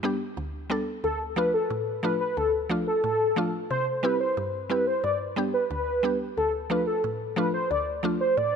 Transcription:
Already playing: synth pluck G2
0.03 synth pluck G3 B3 D4 G4
0.37 synth pluck D2
0.70 synth pluck G3 B3 D4 A4
1.04 synth pluck D2, soft synth lead A4
1.36 synth pluck F3 A3 D4 F4, soft synth lead B4
1.54 soft synth lead A4
1.70 synth pluck A2
2.03 synth pluck F3 A3 D4 F4, soft synth lead B4
2.21 soft synth lead B4
2.37 synth pluck D2, soft synth lead A4
2.69 synth pluck F3 A3 D4 F4
2.87 soft synth lead A4
3.04 synth pluck A2, soft synth lead A4
3.36 synth pluck F3 A3 D4 F4
3.71 synth pluck C3, soft synth lead C5
4.03 synth pluck G3 C4 E4 G4, soft synth lead B4
4.21 soft synth lead C5
4.37 synth pluck G2
4.69 synth pluck G3 C4 E4 G4, soft synth lead B4
4.87 soft synth lead C5
5.04 synth pluck G2, soft synth lead D5
5.36 synth pluck G3 B3 D4 G4
5.54 soft synth lead B4
5.70 synth pluck D2, soft synth lead B4
6.03 synth pluck G3 B3 D4 G4
6.37 synth pluck D2, soft synth lead A4
6.70 synth pluck F3 A3 D4 F4, soft synth lead B4
6.87 soft synth lead A4
7.04 synth pluck A2
7.36 synth pluck F3 A3 D4 F4, soft synth lead B4
7.54 soft synth lead C5
7.71 synth pluck D2, soft synth lead D5
8.03 synth pluck F3 A3 D4 F4
8.21 soft synth lead C5
8.37 synth pluck A2, soft synth lead D5

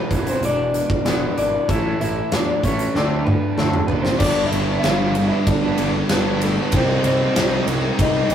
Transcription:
Already playing: overdriven electric guitar B2, clean electric guitar B3 B4
0.09 picked electric bass E1, overdriven electric guitar B2 E3, clean electric guitar E3 G#3, kick, closed hi-hat
0.14 overdriven electric guitar E2
0.27 clean electric guitar C4 C5, closed hi-hat
0.41 picked electric bass E1, clean electric guitar E3 G#3 D4, closed hi-hat
0.45 clean electric guitar D5
0.74 clean electric guitar E3 G#3, closed hi-hat
0.90 kick
1.05 picked electric bass E1, overdriven electric guitar E2 B2, clean electric guitar E3 G#3 B3, snare, closed hi-hat
1.09 overdriven electric guitar E3
1.37 picked electric bass G#1, clean electric guitar E3 G#3 D4 D5, closed hi-hat
1.68 picked electric bass A1, clean electric guitar A2 E3 A3 E4 E5, overdriven electric guitar A2 E3, kick, closed hi-hat
1.73 overdriven electric guitar A3
2.00 picked electric bass A1, clean electric guitar A2 E3 E4 E5, closed hi-hat
2.32 picked electric bass E2, clean electric guitar A2 E3 D4 D5, snare, closed hi-hat
2.63 picked electric bass A1, clean electric guitar A2 E3 C#4 C#5, overdriven electric guitar E3 A3, kick, closed hi-hat
2.67 overdriven electric guitar A2
2.79 closed hi-hat
2.95 picked electric bass D2, overdriven electric guitar D3 A3 D4, clean electric guitar D3 A3 C4 D4 D5, snare
3.24 clean electric guitar D3 A3 B3 B4, mid tom
3.56 picked electric bass D2, clean electric guitar D3 A3 C4 A4, snare
3.74 mid tom
3.87 picked electric bass F#1, clean electric guitar D3 A3 B3 B4, overdriven electric guitar D4, floor tom
3.93 overdriven electric guitar D3 A3
4.02 clean electric guitar C4 C5, snare
4.19 picked electric bass G1, overdriven electric guitar G2 D3, clean electric guitar D4 D5, kick, crash
4.24 overdriven electric guitar G3 B3 D4
4.46 clean electric guitar E4 E5
4.52 picked electric bass G1, overdriven electric guitar D3 G3 B3 D4, ride
4.69 overdriven electric guitar G3 B3 D4
4.80 picked electric bass G1, clean electric guitar F4 F5, ride
4.84 overdriven electric guitar G2 D3 G3 B3 D4, snare
4.89 overdriven electric guitar D4
5.01 overdriven electric guitar G3 B3 D4
5.15 overdriven electric guitar D3 G3, muted overdriven electric guitar stroke, ride
5.19 overdriven electric guitar B3 D4
5.28 overdriven electric guitar B3 D4, clean electric guitar E4 E5
5.33 overdriven electric guitar G3, muted overdriven electric guitar stroke
5.46 picked electric bass G1, clean electric guitar D4 D5, kick, ride
5.62 overdriven electric guitar B3 D4
5.67 overdriven electric guitar G3
5.78 picked electric bass G1, overdriven electric guitar D3 G3, ride
5.82 overdriven electric guitar B3 D4
5.93 overdriven electric guitar G3 B3 D4, muted overdriven electric guitar stroke
6.09 picked electric bass G1, overdriven electric guitar G2 D3 G3, clean electric guitar B3 B4, snare, ride
6.14 overdriven electric guitar B3 D4
6.26 overdriven electric guitar G3 B3 D4
6.40 overdriven electric guitar D3 G3 B3 D4, clean electric guitar A3, ride
6.44 clean electric guitar A4
6.59 overdriven electric guitar G3 B3 D4, clean electric guitar B4
6.63 clean electric guitar B3
6.72 picked electric bass C2, overdriven electric guitar C3 G3 C4, kick, ride
6.76 clean electric guitar C4 C5, overdriven electric guitar D#4
7.03 picked electric bass C2, overdriven electric guitar C3 G3 C4 D#4, clean electric guitar C4 C5, ride
7.20 overdriven electric guitar G3 C4 D#4
7.36 picked electric bass C2, overdriven electric guitar C3 G3 C4 D#4, snare, ride
7.50 overdriven electric guitar G3 C4 D#4
7.66 picked electric bass C2, overdriven electric guitar C3 G3, muted overdriven electric guitar stroke, ride
7.70 overdriven electric guitar C4 D#4
7.82 overdriven electric guitar G3 C4 D#4, muted overdriven electric guitar stroke
7.99 picked electric bass C2, clean electric guitar D#4 D#5, kick, ride
8.14 overdriven electric guitar G3 C4 D#4
8.29 picked electric bass C2, overdriven electric guitar C3 G3 C4 D#4, clean electric guitar G4 G5, ride

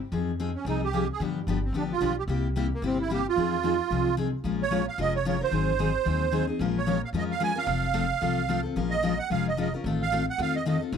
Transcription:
0.12 upright bass F2, steel-string acoustic guitar F3 C4 D#4 G#4
0.40 steel-string acoustic guitar F3 C4 D#4 G#4
0.56 accordion C#4
0.65 upright bass C2, steel-string acoustic guitar F3 C4 D#4 G#4, accordion D#4
0.84 accordion G4
0.93 steel-string acoustic guitar F3 C4 D#4 G#4
1.13 accordion G#4
1.20 upright bass G2, steel-string acoustic guitar D3 F3 B3 D4 G4
1.47 upright bass G1, steel-string acoustic guitar D3 F3 B3 D4 G4
1.65 accordion C4
1.73 upright bass A1, steel-string acoustic guitar D3 F3 B3 D4 G4
1.78 accordion D4
1.92 accordion F4
2.01 upright bass B1, steel-string acoustic guitar D3 F3 B3 D4 G4
2.19 accordion G4
2.28 upright bass C2, steel-string acoustic guitar C3 G3 A#3 E4 G4
2.56 steel-string acoustic guitar C3 G3 A#3 E4 G4
2.74 accordion A#3
2.82 upright bass G1, steel-string acoustic guitar C3 G3 A#3 E4 G4
2.86 accordion C4
3.01 accordion E4
3.10 steel-string acoustic guitar C3 G3 A#3 E4 G4, accordion G4
3.29 accordion F4
3.36 upright bass F2, steel-string acoustic guitar F3 C4 D#4 G#4
3.63 steel-string acoustic guitar F3 C4 D#4 G#4
3.90 upright bass C2, steel-string acoustic guitar F3 C4 D#4 G#4
4.17 steel-string acoustic guitar F3 C4 D#4 G#4
4.44 upright bass A#1, steel-string acoustic guitar F3 G#3 C#4 F4 A#4
4.63 accordion C#5
4.71 steel-string acoustic guitar F3 G#3 C#4 F4 A#4
4.88 accordion F5
4.98 upright bass F1, steel-string acoustic guitar F3 G#3 C#4 F4 A#4, accordion D#5
5.16 accordion C#5
5.25 steel-string acoustic guitar F3 G#3 C#4 F4 A#4, accordion C#5
5.41 steel-string acoustic guitar C#4 F4 A#4, accordion C5
5.51 upright bass G#1, steel-string acoustic guitar D#3 F#3 C4 D#4 G#4
5.79 steel-string acoustic guitar D#3 F#3 C4 D#4 G#4
6.05 upright bass D#2, steel-string acoustic guitar D#3 F#3 C4 D#4 G#4
6.31 steel-string acoustic guitar D#3 F#3 C4 D#4 G#4
6.47 steel-string acoustic guitar C4 D#4 G#4
6.59 upright bass A#1, steel-string acoustic guitar F3 G#3 C#4 F4 A#4
6.78 accordion C#5
6.86 steel-string acoustic guitar F3 G#3 C#4 F4 A#4
7.05 accordion F5
7.13 upright bass F2, steel-string acoustic guitar F3 G#3 C#4 F4 A#4
7.18 accordion D#5
7.32 accordion F5
7.40 steel-string acoustic guitar F3 G#3 C#4 F4 A#4, accordion G#5
7.56 steel-string acoustic guitar C#4 F4 A#4, accordion F5
7.66 upright bass F1, steel-string acoustic guitar F3 A3 C4 F4 A4
7.94 steel-string acoustic guitar F3 A3 C4 F4 A4
8.21 upright bass C2, steel-string acoustic guitar F3 A3 C4 F4 A4
8.49 steel-string acoustic guitar F3 A3 C4 F4 A4
8.63 steel-string acoustic guitar C4 F4 A4
8.76 upright bass A#1, steel-string acoustic guitar F3 G#3 C#4 F4 A#4
8.91 accordion D#5
9.03 steel-string acoustic guitar F3 G#3 C#4 F4 A#4
9.19 accordion F#5
9.30 upright bass F1, steel-string acoustic guitar F3 G#3 C#4 F4 A#4, accordion F5
9.48 accordion D#5
9.57 steel-string acoustic guitar F3 G#3 C#4 F4 A#4, accordion D#5
9.74 steel-string acoustic guitar C#4 F4 A#4
9.84 upright bass A1, steel-string acoustic guitar D#3 A3 C4 F4 A4
10.02 accordion F5
10.12 steel-string acoustic guitar D#3 A3 C4 F4 A4
10.30 accordion F#5
10.38 upright bass F2, steel-string acoustic guitar D#3 A3 C4 F4 A4, accordion F5
10.56 accordion D#5
10.66 steel-string acoustic guitar D#3 A3 C4 F4 A4, accordion D#5
10.81 steel-string acoustic guitar C4 F4 A4
10.92 upright bass C2, steel-string acoustic guitar C3 F#3 C4 D#4

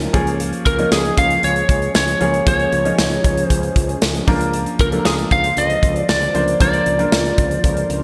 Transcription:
Already playing: grand piano F3 C#4 D#4 F4 G#4 A#4
0.01 closed hi-hat
0.13 fretless electric bass C#2, grand piano F3 A#3 C#4 G#4, kick, closed hi-hat
0.27 closed hi-hat
0.40 closed hi-hat
0.53 closed hi-hat
0.66 fretless electric bass C#2, lead electric guitar A#4, kick, closed hi-hat
0.78 grand piano F3 A#3 C#4 D#4, closed hi-hat
0.91 fretless electric bass C#2, lead electric guitar G#4, snare, tambourine
1.05 closed hi-hat
1.17 fretless electric bass C#2, analog polysynth F3 C#4 G#4, lead electric guitar F5, kick, closed hi-hat
1.30 closed hi-hat
1.43 fretless electric bass C#2, lead electric guitar C#5, closed hi-hat
1.56 closed hi-hat
1.69 fretless electric bass C#2, kick, closed hi-hat
1.82 closed hi-hat
1.95 fretless electric bass C#2, lead electric guitar C#5, snare, tambourine
2.08 closed hi-hat
2.20 fretless electric bass C#2, grand piano F3 A#3 C#4 G#4, closed hi-hat
2.34 closed hi-hat
2.46 fretless electric bass C#2, grand piano F3 A#3 C#4 G#4, lead electric guitar C#5, kick, closed hi-hat
2.60 closed hi-hat
2.72 fretless electric bass C#2, closed hi-hat
2.85 grand piano F3 A#3 C#4 D#4, closed hi-hat
2.98 fretless electric bass C#2, snare, tambourine
3.12 closed hi-hat
3.24 fretless electric bass C#2, kick, closed hi-hat
3.37 closed hi-hat
3.45 lead electric guitar C5
3.50 fretless electric bass C#2, kick, closed hi-hat
3.63 closed hi-hat
3.76 fretless electric bass C#2, kick, closed hi-hat
3.89 closed hi-hat
4.02 fretless electric bass C#2, snare, tambourine
4.15 closed hi-hat
4.27 fretless electric bass C#2, grand piano F3 A#3 D4 A#4, kick, open hi-hat
4.41 closed hi-hat
4.53 closed hi-hat
4.66 closed hi-hat
4.79 fretless electric bass C#2, lead electric guitar A#4, kick, closed hi-hat
4.92 grand piano F3 A#3 D4 A4, closed hi-hat
4.99 grand piano A#4
5.05 fretless electric bass C#2, lead electric guitar G#4, snare, tambourine
5.18 closed hi-hat
5.31 fretless electric bass C#2, analog polysynth D3 F3 C5, lead electric guitar F5, kick, closed hi-hat
5.44 closed hi-hat
5.57 fretless electric bass C#2, lead electric guitar D#5, closed hi-hat
5.70 closed hi-hat
5.83 fretless electric bass C#2, kick, closed hi-hat
5.96 lead electric guitar D5, closed hi-hat
6.09 fretless electric bass C#2, lead electric guitar D5, snare, tambourine
6.22 closed hi-hat
6.34 fretless electric bass C#2, grand piano F3 A#3 D4 C5, closed hi-hat
6.48 closed hi-hat
6.60 fretless electric bass C#2, grand piano F3 A#3 D4 A#4, lead electric guitar D5, kick, closed hi-hat
6.73 closed hi-hat
6.86 fretless electric bass C#2, closed hi-hat
6.99 grand piano F3 A#3 D4 A#4, closed hi-hat
7.12 fretless electric bass C#2, clean electric guitar F4, snare, tambourine
7.25 closed hi-hat
7.38 fretless electric bass C#2, kick, closed hi-hat
7.51 closed hi-hat
7.64 fretless electric bass C#2, clean electric guitar A#4, kick, closed hi-hat
7.77 closed hi-hat
7.89 fretless electric bass C#2, clean electric guitar A#4, closed hi-hat

